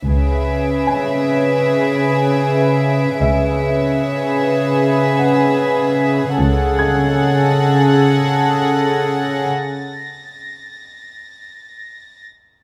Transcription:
0.04 0.81 C#2 soft
0.04 3.18 C#3 soft
0.04 3.18 G#4 soft
0.04 3.18 B4 soft
0.04 5.94 C#5 soft
0.04 3.17 E5 soft
0.04 3.88 D7 soft
0.87 3.19 G#5 soft
3.20 3.97 C#2 soft
3.20 6.34 C#3 soft
3.20 6.34 G#4 soft
3.20 6.34 B4 soft
3.20 6.33 E5 soft
3.20 5.54 E5 soft
3.88 5.14 C#7 soft
5.19 7.52 F#5 soft
6.36 7.12 C#2 soft
6.36 9.49 C#3 soft
6.36 9.49 G#4 soft
6.36 9.49 A4 soft
6.36 9.48 F#5 soft
6.40 12.27 A6 soft
6.79 9.11 G#6 soft
7.19 12.27 A#6 soft

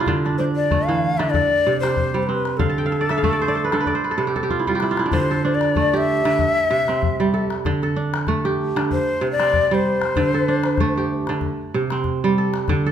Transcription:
0.00 0.11 C3 medium
0.00 0.11 G3 medium
0.00 0.16 A3 medium
0.00 0.25 D4 medium
0.00 1.50 E4 medium
0.00 0.94 F4 medium
0.00 0.85 G4 medium
0.00 0.69 A4 medium
0.00 0.53 B4 medium
0.06 1.18 D3 medium
0.06 calabash thump medium
0.25 0.39 D4 medium
0.25 calabash click soft
0.38 1.19 D4 medium
0.38 0.44 C5 medium
0.55 0.87 D5 medium
0.71 2.71 A3 medium
0.71 calabash thump medium
0.71 calabash click soft
0.86 1.22 E3 medium
0.86 1.19 F5 medium
0.86 calabash click soft
1.17 1.38 D3 medium
1.17 2.88 D4 medium
1.17 1.32 E5 medium
1.17 calabash click soft
1.30 1.79 D5 medium
1.30 calabash thump medium
1.35 2.66 A4 medium
1.67 2.64 C3 medium
1.80 3.25 G4 medium
1.80 2.22 C5 medium
1.80 calabash click soft
1.97 calabash thump medium
2.14 2.64 G3 medium
2.22 2.28 C5 medium
2.27 3.70 C4 medium
2.27 2.59 B4 medium
2.27 calabash click soft
2.45 calabash click soft
2.57 3.72 D3 medium
2.57 4.48 A4 medium
2.57 2.85 F5 medium
2.57 calabash thump medium
2.57 calabash click soft
2.69 3.56 A5 medium
2.78 3.71 G5 medium
2.86 3.16 F5 medium
2.92 3.10 E5 medium
2.92 calabash click soft
3.01 3.32 D5 medium
3.09 3.23 E5 medium
3.09 calabash click medium
3.18 4.17 F5 medium
3.23 5.23 A3 medium
3.23 4.27 E5 medium
3.23 calabash thump medium
3.23 calabash click soft
3.33 3.48 D5 medium
3.41 3.55 C5 medium
3.48 3.87 D5 medium
3.54 3.86 C5 medium
3.54 calabash click soft
3.64 3.80 B4 medium
3.72 3.91 D3 medium
3.72 4.11 A4 medium
3.72 calabash click soft
3.80 4.01 B4 medium
3.86 4.98 D5 medium
3.86 calabash thump medium
3.86 calabash click soft
3.95 4.24 C5 medium
4.04 4.17 B4 medium
4.11 4.35 A4 medium
4.18 5.18 C3 medium
4.18 5.41 B4 medium
4.27 4.43 G4 medium
4.35 5.30 A4 medium
4.35 calabash thump soft
4.43 4.75 G4 medium
4.50 4.67 F4 medium
4.50 calabash thump soft
4.59 4.82 E4 medium
4.67 5.18 G3 medium
4.67 4.88 F4 medium
4.67 calabash thump soft
4.75 5.93 G4 medium
4.80 4.99 E4 medium
4.80 calabash click soft
4.91 6.42 F4 medium
4.97 6.56 E4 medium
4.97 calabash click soft
5.06 5.44 D4 medium
5.12 6.24 D3 medium
5.12 5.56 C5 loud
5.12 calabash thump medium
5.29 6.63 A4 medium
5.29 calabash click soft
5.45 7.13 D4 medium
5.54 5.98 D5 medium
5.61 calabash click soft
5.76 7.76 A3 medium
5.76 calabash thump medium
5.76 calabash click soft
5.93 7.35 G4 medium
5.93 7.54 E5 loud
5.93 calabash click soft
6.25 6.44 D3 medium
6.25 calabash click soft
6.39 calabash thump medium
6.71 7.70 C3 medium
6.88 8.69 C4 medium
6.88 calabash click soft
7.03 calabash thump medium
7.20 7.70 G3 medium
7.34 7.83 A4 medium
7.34 calabash click soft
7.50 calabash click soft
7.65 8.75 D3 medium
7.65 calabash thump medium
7.82 9.15 A4 medium
7.82 calabash click soft
7.96 9.64 D4 medium
8.14 calabash click medium
8.27 10.28 A3 medium
8.27 calabash thump medium
8.27 calabash click soft
8.45 9.86 G4 medium
8.45 calabash click soft
8.76 8.96 D3 medium
8.76 calabash click medium
8.91 9.30 C5 loud
8.91 calabash thump medium
9.21 10.22 C3 medium
9.31 9.76 D5 loud
9.40 11.20 C4 medium
9.40 calabash click soft
9.53 calabash thump medium
9.71 10.22 G3 medium
9.71 11.32 C5 medium
9.85 calabash click soft
10.02 calabash click soft
10.16 11.28 D3 medium
10.16 calabash thump medium
10.33 11.66 A4 medium
10.33 calabash click soft
10.48 12.16 D4 medium
10.64 calabash click medium
10.78 12.80 A3 medium
10.78 calabash thump medium
10.78 calabash click soft
10.96 12.39 G4 medium
10.96 calabash click soft
11.27 11.48 D3 medium
11.27 calabash click soft
11.41 calabash thump medium
11.74 12.74 C3 medium
11.90 12.92 C4 medium
11.90 calabash click soft
12.04 calabash thump medium
12.24 12.74 G3 medium
12.38 12.86 A4 medium
12.54 calabash click medium
12.68 12.92 D3 medium
12.68 calabash thump medium
12.68 calabash click soft
12.86 12.92 A4 medium

